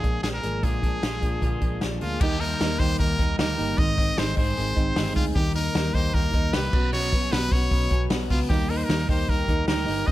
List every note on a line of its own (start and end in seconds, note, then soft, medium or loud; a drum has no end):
0.00 0.20 A#1 medium
0.00 0.62 F3 medium
0.00 0.24 D4 medium
0.00 0.23 D4 soft
0.00 1.02 F4 medium
0.00 0.23 G#4 medium
0.00 0.23 G#4 soft
0.00 closed hi-hat medium
0.04 0.20 F3 soft
0.04 0.43 G#3 medium
0.04 0.22 A#3 soft
0.04 kick medium
0.22 0.40 A#1 medium
0.22 0.42 F3 medium
0.22 0.43 A#3 medium
0.22 0.34 C4 medium
0.22 0.42 D4 medium
0.22 0.28 G#4 medium
0.22 0.40 G#4 medium
0.22 snare loud
0.22 closed hi-hat medium
0.34 0.83 D4 soft
0.34 0.65 A#4 medium
0.41 0.63 G#1 medium
0.41 0.61 F3 soft
0.41 1.61 G#3 medium
0.41 0.62 A#3 soft
0.41 0.62 D4 medium
0.41 0.62 G#4 medium
0.41 closed hi-hat medium
0.62 0.95 A#1 loud
0.62 0.82 A#2 medium
0.62 0.82 D3 medium
0.62 0.83 F3 medium
0.62 0.83 A#3 medium
0.62 0.81 D4 medium
0.62 1.81 G#4 medium
0.62 0.80 G#4 medium
0.62 kick medium
0.62 closed hi-hat medium
0.81 1.00 F3 soft
0.81 1.01 A#3 soft
0.81 1.02 D4 soft
0.81 1.02 G#4 medium
0.81 kick medium
0.81 closed hi-hat medium
1.01 1.19 A#1 medium
1.01 1.22 F3 medium
1.01 1.22 A#3 medium
1.01 1.21 D4 medium
1.01 1.42 F4 medium
1.01 snare loud
1.01 closed hi-hat medium
1.21 1.38 A#2 loud
1.21 1.41 F3 soft
1.21 1.41 A#3 soft
1.21 1.42 D4 soft
1.21 1.41 G#4 medium
1.21 kick medium
1.21 closed hi-hat medium
1.41 1.58 A#1 medium
1.41 1.61 A#2 medium
1.41 1.61 D3 medium
1.41 1.62 F3 medium
1.41 1.62 A#3 medium
1.41 1.60 D4 medium
1.41 2.25 F4 medium
1.41 1.59 G#4 medium
1.41 kick medium
1.41 closed hi-hat medium
1.60 1.78 A#1 medium
1.60 1.78 F3 soft
1.60 2.00 G#3 soft
1.60 1.80 A#3 medium
1.60 1.81 D4 soft
1.60 1.81 G#4 medium
1.60 kick medium
1.60 closed hi-hat medium
1.80 1.98 A#1 medium
1.80 2.00 F3 medium
1.80 2.00 A#3 medium
1.80 1.99 D4 medium
1.80 1.98 G#4 medium
1.80 snare medium
1.80 closed hi-hat medium
1.99 2.18 D2 medium
1.99 2.21 F3 soft
1.99 2.25 G#3 medium
1.99 2.21 A#3 soft
1.99 2.20 D4 medium
1.99 2.22 F4 medium
1.99 2.20 G#4 medium
1.99 open hi-hat medium
2.20 2.53 D#2 loud
2.20 2.40 D#3 medium
2.20 2.41 G3 medium
2.20 2.40 A#3 medium
2.20 2.38 D#4 medium
2.20 2.42 G4 loud
2.20 kick loud
2.20 crash medium
2.40 2.59 G3 soft
2.40 2.60 A#3 medium
2.40 3.19 D#4 medium
2.40 2.80 A#4 loud
2.40 hi-hat pedal medium
2.40 open hi-hat medium
2.59 2.76 D#2 loud
2.59 2.79 D#3 medium
2.59 2.80 G3 medium
2.59 2.80 A#3 medium
2.59 2.78 D#4 medium
2.59 snare loud
2.59 hi-hat pedal medium
2.59 open hi-hat medium
2.79 2.96 D#2 loud
2.79 2.98 G3 soft
2.79 3.00 A#3 medium
2.79 2.99 D#4 medium
2.79 3.38 G4 medium
2.79 2.99 C5 loud
2.79 kick medium
2.79 hi-hat pedal medium
2.79 open hi-hat medium
2.99 3.16 D#2 medium
2.99 3.19 D#3 medium
2.99 3.19 G3 medium
2.99 3.18 A#3 medium
2.99 3.17 D#4 medium
2.99 3.36 A#4 loud
2.99 kick medium
2.99 hi-hat pedal medium
2.99 open hi-hat medium
3.18 3.35 D#2 loud
3.18 3.38 G3 soft
3.18 3.39 A#3 medium
3.18 3.38 D#4 medium
3.18 kick medium
3.18 hi-hat pedal medium
3.18 open hi-hat medium
3.38 3.55 D2 medium
3.38 3.58 D#3 medium
3.38 3.59 G3 medium
3.38 3.58 A#3 medium
3.38 3.56 D#4 medium
3.38 3.82 G4 medium
3.38 3.80 A#4 loud
3.38 snare loud
3.38 hi-hat pedal medium
3.38 open hi-hat medium
3.57 3.75 G1 medium
3.57 3.78 G3 soft
3.57 3.78 A#3 medium
3.57 3.78 D#4 medium
3.57 hi-hat pedal medium
3.57 open hi-hat medium
3.78 4.10 G#1 loud
3.78 3.97 G#2 medium
3.78 3.98 D#3 medium
3.78 3.98 G#3 medium
3.78 3.97 C4 medium
3.78 3.96 D#4 medium
3.78 4.20 D#5 loud
3.78 kick loud
3.78 hi-hat pedal medium
3.78 open hi-hat loud
3.97 4.17 G#3 soft
3.97 4.18 C4 soft
3.97 4.17 D#4 soft
3.97 kick medium
3.97 hi-hat pedal medium
3.97 open hi-hat medium
4.17 4.34 G#1 medium
4.17 4.37 G#2 medium
4.17 4.37 D#3 medium
4.17 4.37 G#3 medium
4.17 4.37 C4 medium
4.17 4.35 D#4 medium
4.17 4.37 C5 loud
4.17 snare loud
4.17 hi-hat pedal medium
4.17 open hi-hat loud
4.36 4.53 G#1 loud
4.36 4.56 G#3 soft
4.36 4.57 C4 soft
4.36 4.56 D#4 medium
4.36 4.96 G#4 medium
4.36 5.12 C5 loud
4.36 kick medium
4.36 hi-hat pedal medium
4.36 open hi-hat medium
4.56 4.73 G#1 medium
4.56 4.76 D#3 medium
4.56 4.77 G#3 medium
4.56 4.77 C4 medium
4.56 4.75 D#4 medium
4.56 hi-hat pedal medium
4.56 open hi-hat medium
4.76 4.93 G#1 loud
4.76 4.96 G#3 soft
4.76 4.96 C4 medium
4.76 4.96 D#4 medium
4.76 kick medium
4.76 hi-hat pedal medium
4.76 open hi-hat medium
4.96 5.12 G1 medium
4.96 5.16 G#2 medium
4.96 5.16 D#3 medium
4.96 5.16 G#3 medium
4.96 5.16 C4 loud
4.96 5.14 D#4 medium
4.96 5.40 G#4 medium
4.96 snare loud
4.96 hi-hat pedal medium
4.96 open hi-hat medium
5.16 5.32 D2 medium
5.16 5.35 G#3 medium
5.16 5.36 C4 medium
5.16 5.35 D#4 medium
5.16 5.25 F4 medium
5.16 kick medium
5.16 hi-hat pedal medium
5.16 open hi-hat medium
5.35 5.68 D#2 loud
5.35 5.55 D#3 medium
5.35 5.55 G3 medium
5.35 5.55 A#3 medium
5.35 5.53 D#4 medium
5.35 5.53 G4 loud
5.35 kick loud
5.35 hi-hat pedal medium
5.35 open hi-hat medium
5.54 5.73 G3 soft
5.54 5.74 A#3 medium
5.54 5.74 D#4 medium
5.54 5.96 A#4 medium
5.54 hi-hat pedal medium
5.54 open hi-hat medium
5.74 5.91 D#2 loud
5.74 5.94 D#3 medium
5.74 5.94 G3 medium
5.74 5.94 A#3 medium
5.74 5.93 D#4 medium
5.74 snare loud
5.74 hi-hat pedal medium
5.74 open hi-hat medium
5.94 6.11 D#2 loud
5.94 6.13 G3 soft
5.94 6.14 A#3 medium
5.94 6.14 D#4 soft
5.94 6.53 G4 medium
5.94 6.15 C5 loud
5.94 kick medium
5.94 hi-hat pedal medium
5.94 open hi-hat medium
6.13 6.30 D#2 medium
6.13 6.33 D#3 medium
6.13 6.34 G3 medium
6.13 6.34 A#3 medium
6.13 6.32 D#4 medium
6.13 6.55 A#4 loud
6.13 kick medium
6.13 hi-hat pedal medium
6.13 open hi-hat medium
6.33 6.50 D#2 loud
6.33 6.53 G3 soft
6.33 6.53 A#3 soft
6.33 6.53 D#4 medium
6.33 kick medium
6.33 hi-hat pedal medium
6.33 open hi-hat medium
6.53 6.70 C2 medium
6.53 6.73 D#3 medium
6.53 6.73 G3 medium
6.53 6.74 A#3 medium
6.53 6.72 D#4 medium
6.53 6.77 G4 medium
6.53 6.92 B4 loud
6.53 snare loud
6.53 hi-hat pedal medium
6.53 open hi-hat medium
6.73 7.22 B1 medium
6.73 6.92 F#3 soft
6.73 6.93 B3 medium
6.73 6.93 C#4 medium
6.73 kick loud
6.73 crash medium
6.92 7.12 B2 medium
6.92 7.13 F#3 medium
6.92 7.13 B3 medium
6.92 7.11 C#4 medium
6.92 7.33 C#5 loud
6.92 hi-hat pedal medium
6.92 open hi-hat medium
7.12 7.31 F#3 soft
7.12 7.32 B3 soft
7.12 7.32 C#4 medium
7.12 kick medium
7.12 hi-hat pedal medium
7.12 open hi-hat medium
7.22 7.90 C#4 medium
7.31 7.48 B1 loud
7.31 7.51 B2 medium
7.31 7.52 F#3 medium
7.31 7.51 B3 medium
7.31 7.49 C#4 medium
7.31 7.53 B4 loud
7.31 snare loud
7.31 hi-hat pedal medium
7.31 open hi-hat medium
7.50 7.68 B1 loud
7.50 7.70 F#3 soft
7.50 7.71 B3 soft
7.50 7.71 C#4 medium
7.50 8.10 F#4 medium
7.50 8.04 C#5 loud
7.50 kick loud
7.50 hi-hat pedal medium
7.50 open hi-hat medium
7.69 7.88 B1 medium
7.69 7.90 B2 medium
7.69 7.91 F#3 medium
7.69 7.90 B3 medium
7.69 7.88 C#4 medium
7.69 kick medium
7.69 hi-hat pedal medium
7.69 open hi-hat medium
7.89 8.07 B1 loud
7.89 8.09 F#3 soft
7.89 8.10 B3 soft
7.89 8.10 C#4 medium
7.89 kick medium
7.89 hi-hat pedal medium
7.89 open hi-hat medium
8.09 8.30 B1 medium
8.09 8.30 B2 medium
8.09 8.30 F#3 medium
8.09 8.29 B3 medium
8.09 8.28 C#4 medium
8.09 8.54 F#4 medium
8.09 snare loud
8.09 hi-hat pedal medium
8.09 open hi-hat medium
8.29 8.47 C#2 medium
8.29 8.50 F#3 soft
8.29 8.50 B3 medium
8.29 8.49 C#4 medium
8.29 8.39 F4 medium
8.29 kick medium
8.29 hi-hat pedal medium
8.29 open hi-hat medium
8.49 8.82 D#2 loud
8.49 8.69 D#3 medium
8.49 8.70 G3 medium
8.49 8.69 A#3 medium
8.49 8.67 D#4 medium
8.49 8.71 G4 medium
8.49 kick loud
8.49 hi-hat pedal medium
8.49 open hi-hat medium
8.68 8.88 G3 soft
8.68 8.89 A#3 medium
8.68 8.89 D#4 medium
8.68 8.78 A#4 medium
8.68 hi-hat pedal medium
8.68 open hi-hat medium
8.77 8.85 C5 medium
8.84 9.09 A#4 medium
8.88 9.05 D#2 loud
8.88 9.09 D#3 medium
8.88 9.09 G3 medium
8.88 9.09 A#3 medium
8.88 9.07 D#4 medium
8.88 snare loud
8.88 hi-hat pedal medium
8.88 open hi-hat medium
9.08 9.25 D#2 loud
9.08 9.27 G3 soft
9.08 9.28 A#3 soft
9.08 9.29 D#4 medium
9.08 9.67 G4 medium
9.08 9.31 C5 medium
9.08 kick loud
9.08 hi-hat pedal medium
9.08 open hi-hat medium
9.27 9.45 D#2 medium
9.27 9.48 D#3 medium
9.27 9.48 G3 medium
9.27 9.48 A#3 medium
9.27 9.46 D#4 medium
9.27 9.67 A#4 loud
9.27 kick medium
9.27 hi-hat pedal medium
9.27 open hi-hat medium
9.48 9.65 D#2 medium
9.48 9.67 G3 soft
9.48 9.67 A#3 medium
9.48 9.68 D#4 soft
9.48 kick medium
9.48 hi-hat pedal medium
9.48 open hi-hat medium
9.67 9.84 D2 medium
9.67 9.87 D#3 medium
9.67 9.88 G3 medium
9.67 9.87 A#3 medium
9.67 9.85 D#4 medium
9.67 10.12 G4 medium
9.67 10.08 A#4 medium
9.67 snare loud
9.67 hi-hat pedal medium
9.67 open hi-hat medium
9.86 10.04 G1 medium
9.86 10.07 G3 soft
9.86 10.08 A#3 medium
9.86 10.07 D#4 medium
9.86 hi-hat pedal medium
9.86 open hi-hat medium
10.06 10.12 G#1 loud
10.06 10.12 G#2 medium
10.06 10.12 D#3 medium
10.06 10.12 G#3 medium
10.06 10.12 C4 medium
10.06 10.12 D#4 medium
10.06 10.12 D#5 loud
10.06 kick loud
10.06 hi-hat pedal medium
10.06 open hi-hat medium